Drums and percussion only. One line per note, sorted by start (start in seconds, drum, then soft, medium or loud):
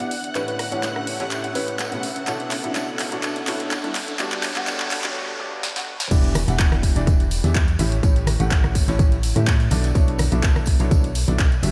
0.00 closed hi-hat soft
0.11 open hi-hat loud
0.11 tambourine medium
0.24 closed hi-hat medium
0.35 clap medium
0.35 closed hi-hat medium
0.35 tambourine medium
0.48 closed hi-hat soft
0.59 cross-stick medium
0.59 open hi-hat loud
0.59 tambourine medium
0.72 closed hi-hat medium
0.83 snare loud
0.83 clap medium
0.83 closed hi-hat medium
0.83 tambourine medium
0.96 cross-stick medium
0.96 snare soft
1.07 open hi-hat medium
1.07 open hi-hat loud
1.19 snare soft
1.19 closed hi-hat medium
1.31 clap medium
1.31 closed hi-hat medium
1.31 tambourine medium
1.44 closed hi-hat soft
1.55 open hi-hat loud
1.55 tambourine medium
1.68 closed hi-hat medium
1.79 snare loud
1.79 clap medium
1.79 closed hi-hat medium
1.79 tambourine medium
1.92 closed hi-hat soft
2.03 snare soft
2.03 open hi-hat loud
2.03 tambourine medium
2.16 snare medium
2.16 closed hi-hat medium
2.27 clap medium
2.27 closed hi-hat medium
2.27 tambourine medium
2.40 closed hi-hat soft
2.51 clap medium
2.51 open hi-hat loud
2.51 tambourine medium
2.64 closed hi-hat medium
2.75 snare loud
2.75 clap medium
2.75 closed hi-hat medium
2.75 tambourine medium
2.88 closed hi-hat soft
2.99 snare loud
2.99 clap medium
2.99 open hi-hat loud
2.99 tambourine medium
3.12 closed hi-hat soft
3.12 closed hi-hat medium
3.23 clap medium
3.23 closed hi-hat medium
3.23 tambourine medium
3.36 closed hi-hat soft
3.47 clap medium
3.47 open hi-hat loud
3.47 tambourine medium
3.60 snare soft
3.60 closed hi-hat soft
3.71 snare loud
3.71 clap medium
3.71 closed hi-hat medium
3.71 tambourine medium
3.84 closed hi-hat soft
3.95 clap medium
3.95 open hi-hat loud
3.95 tambourine medium
4.08 closed hi-hat medium
4.19 clap medium
4.19 closed hi-hat medium
4.19 tambourine medium
4.32 clap medium
4.32 closed hi-hat soft
4.43 clap loud
4.43 open hi-hat loud
4.43 tambourine medium
4.56 clap medium
4.56 closed hi-hat medium
4.67 snare loud
4.67 clap medium
4.67 closed hi-hat medium
4.67 tambourine medium
4.80 snare medium
4.80 clap medium
4.91 clap loud
4.91 open hi-hat medium
4.91 open hi-hat loud
5.03 snare soft
5.03 clap medium
5.03 closed hi-hat medium
5.63 snare medium
5.76 snare medium
6.00 snare medium
6.11 kick loud
6.11 closed hi-hat medium
6.11 crash loud
6.11 tambourine medium
6.23 closed hi-hat soft
6.23 tambourine soft
6.35 cross-stick medium
6.35 open hi-hat loud
6.35 tambourine medium
6.35 tambourine loud
6.35 high conga medium
6.48 closed hi-hat medium
6.48 tambourine soft
6.59 kick loud
6.59 snare loud
6.59 clap loud
6.59 closed hi-hat medium
6.59 tambourine medium
6.72 cross-stick medium
6.72 closed hi-hat soft
6.72 tambourine soft
6.72 high conga medium
6.83 kick medium
6.83 open hi-hat loud
6.83 tambourine medium
6.96 closed hi-hat soft
6.96 closed hi-hat medium
6.96 tambourine soft
7.07 kick loud
7.07 closed hi-hat medium
7.07 tambourine soft
7.07 tambourine medium
7.07 high conga loud
7.20 closed hi-hat soft
7.20 tambourine soft
7.31 open hi-hat loud
7.31 tambourine medium
7.44 snare soft
7.44 closed hi-hat medium
7.44 tambourine soft
7.44 high conga medium
7.54 kick loud
7.54 snare loud
7.54 clap loud
7.54 closed hi-hat medium
7.54 tambourine medium
7.68 closed hi-hat soft
7.68 tambourine soft
7.79 open hi-hat loud
7.79 tambourine medium
7.79 high conga loud
7.92 closed hi-hat medium
7.92 tambourine soft
8.03 kick loud
8.03 closed hi-hat medium
8.03 tambourine medium
8.16 closed hi-hat soft
8.16 tambourine soft
8.27 cross-stick medium
8.27 open hi-hat loud
8.27 tambourine medium
8.27 high conga medium
8.40 closed hi-hat medium
8.40 tambourine soft
8.51 kick loud
8.51 snare loud
8.51 clap loud
8.51 closed hi-hat medium
8.51 tambourine loud
8.51 tambourine medium
8.63 cross-stick medium
8.63 snare soft
8.63 tambourine soft
8.63 high conga medium
8.75 kick medium
8.75 open hi-hat loud
8.75 open hi-hat medium
8.75 tambourine loud
8.88 snare soft
8.88 closed hi-hat medium
8.88 tambourine soft
8.99 kick loud
8.99 closed hi-hat medium
8.99 tambourine medium
8.99 high conga medium
9.12 closed hi-hat soft
9.12 tambourine soft
9.23 open hi-hat loud
9.23 tambourine medium
9.23 tambourine loud
9.36 closed hi-hat medium
9.36 tambourine soft
9.36 high conga medium
9.47 kick loud
9.47 snare loud
9.47 clap loud
9.47 closed hi-hat medium
9.47 tambourine medium
9.60 closed hi-hat soft
9.60 tambourine soft
9.71 snare soft
9.71 open hi-hat loud
9.71 tambourine medium
9.71 high conga loud
9.73 tambourine medium
9.83 snare medium
9.83 closed hi-hat medium
9.83 tambourine soft
9.95 kick loud
9.95 closed hi-hat medium
9.95 tambourine medium
9.95 tambourine loud
10.08 closed hi-hat soft
10.08 tambourine soft
10.19 cross-stick medium
10.19 open hi-hat loud
10.19 tambourine medium
10.19 high conga medium
10.31 closed hi-hat medium
10.31 tambourine soft
10.43 kick loud
10.43 snare loud
10.43 clap loud
10.43 closed hi-hat medium
10.43 tambourine medium
10.56 cross-stick medium
10.56 closed hi-hat soft
10.56 tambourine soft
10.56 high conga medium
10.66 kick medium
10.66 open hi-hat loud
10.66 tambourine loud
10.67 tambourine medium
10.80 closed hi-hat soft
10.80 closed hi-hat medium
10.80 tambourine soft
10.91 kick loud
10.91 closed hi-hat medium
10.91 tambourine medium
10.91 high conga medium
11.04 closed hi-hat soft
11.04 tambourine soft
11.15 open hi-hat loud
11.15 tambourine loud
11.15 tambourine medium
11.28 snare soft
11.28 closed hi-hat medium
11.28 tambourine soft
11.28 high conga medium
11.39 kick loud
11.39 snare loud
11.39 clap loud
11.39 closed hi-hat medium
11.39 tambourine medium
11.52 closed hi-hat soft
11.52 tambourine soft
11.63 open hi-hat loud
11.63 tambourine loud
11.63 tambourine medium
11.63 high conga medium